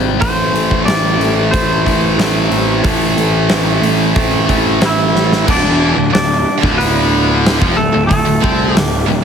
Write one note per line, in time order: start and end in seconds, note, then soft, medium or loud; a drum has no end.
0.00 0.19 G#1 medium
0.00 0.18 C3 medium
0.00 0.19 G3 medium
0.00 0.23 C4 medium
0.00 0.54 C4 medium
0.00 0.86 E4 medium
0.00 0.20 G4 medium
0.19 0.52 A1 medium
0.19 1.84 A2 medium
0.19 1.83 A2 medium
0.19 1.84 E3 medium
0.19 0.83 C5 loud
0.19 kick loud
0.19 open hi-hat medium
0.24 1.85 A3 medium
0.54 0.85 A1 medium
0.54 1.19 A3 medium
0.54 open hi-hat medium
0.71 kick medium
0.85 1.17 A1 medium
0.85 1.50 C4 medium
0.85 1.51 D5 loud
0.85 snare loud
0.85 open hi-hat medium
1.19 1.50 A1 medium
1.19 2.17 A3 medium
1.19 open hi-hat medium
1.51 1.84 A1 loud
1.51 2.81 A2 medium
1.51 2.82 E3 medium
1.51 2.50 C4 medium
1.51 4.77 C5 medium
1.51 kick loud
1.51 open hi-hat medium
1.55 2.85 A3 medium
1.85 2.17 A1 medium
1.85 2.17 A2 medium
1.85 2.17 E3 medium
1.85 2.21 A3 medium
1.85 3.50 E4 medium
1.85 kick medium
1.85 open hi-hat soft
2.17 2.49 A1 medium
2.17 2.81 A2 medium
2.17 2.83 E3 medium
2.17 3.17 A3 medium
2.17 snare loud
2.17 open hi-hat medium
2.21 2.86 A3 medium
2.50 2.82 A1 medium
2.50 3.50 C4 medium
2.50 open hi-hat soft
2.83 3.15 A1 medium
2.83 4.46 A2 medium
2.83 4.48 A2 medium
2.83 4.47 E3 medium
2.83 4.45 A3 medium
2.83 kick loud
2.83 open hi-hat medium
3.17 3.48 A1 medium
3.17 3.82 A3 medium
3.17 open hi-hat medium
3.50 3.81 A1 medium
3.50 4.17 C4 medium
3.50 snare loud
3.50 open hi-hat medium
3.82 4.13 A1 medium
3.82 4.80 A3 medium
3.82 open hi-hat medium
4.14 4.47 A1 medium
4.14 5.44 A2 medium
4.14 5.45 E3 medium
4.14 5.46 A3 medium
4.14 kick loud
4.14 open hi-hat medium
4.18 5.13 C4 medium
4.46 4.80 A1 medium
4.46 4.80 E3 medium
4.46 4.78 A3 medium
4.46 5.48 E4 medium
4.46 kick medium
4.46 open hi-hat medium
4.51 4.78 A2 medium
4.79 5.12 A1 medium
4.79 5.44 A2 medium
4.79 5.45 E3 medium
4.79 5.47 A3 medium
4.79 5.46 A3 medium
4.79 snare loud
4.79 open hi-hat medium
4.85 5.45 E4 medium
4.85 5.47 E5 loud
5.14 5.46 A1 medium
5.14 5.47 C4 medium
5.14 snare medium
5.32 snare medium
5.45 5.63 D1 medium
5.45 5.62 D2 loud
5.45 5.62 D3 medium
5.45 6.10 D4 medium
5.45 kick loud
5.45 crash loud
5.51 6.12 D5 loud
5.63 5.94 E1 medium
5.63 5.95 E2 medium
5.63 5.96 E3 loud
5.96 6.12 D1 medium
5.96 6.12 D2 medium
6.13 6.43 D1 medium
6.13 6.39 D2 medium
6.13 6.75 D4 medium
6.13 6.75 D5 medium
6.13 snare loud
6.13 open hi-hat medium
6.58 7.58 D2 medium
6.58 7.58 D3 medium
6.62 7.57 D1 loud
6.62 7.60 D2 medium
6.62 7.61 D3 medium
6.62 kick loud
6.62 snare soft
6.78 7.40 B3 medium
6.78 7.40 B4 medium
6.78 open hi-hat medium
7.46 snare loud
7.46 open hi-hat medium
7.61 7.76 F1 medium
7.61 7.76 F2 medium
7.61 7.77 F3 loud
7.61 kick loud
7.77 7.93 D1 medium
7.77 7.93 D2 medium
7.77 8.07 A3 medium
7.77 8.06 A4 loud
7.94 8.09 D1 medium
7.94 8.09 D2 medium
8.07 8.25 D1 medium
8.07 8.24 D2 medium
8.07 9.04 A3 medium
8.07 8.75 A4 loud
8.07 kick medium
8.11 open hi-hat medium
8.26 8.42 D1 medium
8.26 8.42 D2 medium
8.42 8.74 C2 medium
8.42 8.74 C3 medium
8.42 8.75 C4 loud
8.42 kick loud
8.75 9.07 D1 medium
8.75 9.02 D2 medium
8.75 9.03 G4 loud
8.75 snare loud
8.75 open hi-hat medium
9.08 9.24 D1 medium
9.08 9.24 D2 medium